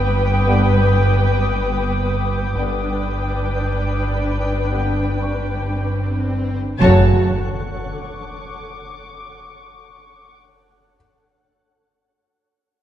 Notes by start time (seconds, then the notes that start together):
Already playing: G1 G2 B3 B4 G5 D6 D#6
0.47 D3 G3 B3 D4
2.55 G1 G2 D3 G3 B3 D4 B4 G5, swell
2.59 D4 B4
4.70 D3 G3 B3 D4
5.22 C#6
6.80 F#1 F#2 C#3 F#3 A3 F#4 C#5 A5 C#6, impact
7.86 D6